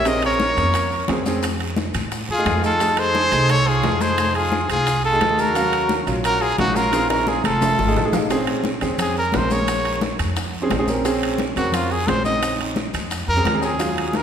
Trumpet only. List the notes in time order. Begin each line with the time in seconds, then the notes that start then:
0.08 D#5
0.26 C#5
2.31 G#4
2.66 A4
2.99 C5
3.51 C#5
3.68 G#4
4.02 C5
4.36 G#4
4.71 G#4
5.05 A4
5.40 A#4
6.25 A#4
6.42 G#4
6.59 F#4
6.76 A#4
7.10 A#4
7.29 G#4
7.45 A4
9.02 G#4
9.18 A#4
9.37 C5
9.52 C#5
11.57 F#4
11.74 F4
11.92 G#4
12.09 C5
12.25 D#5
13.29 A#4
13.64 G#4
14.16 A#4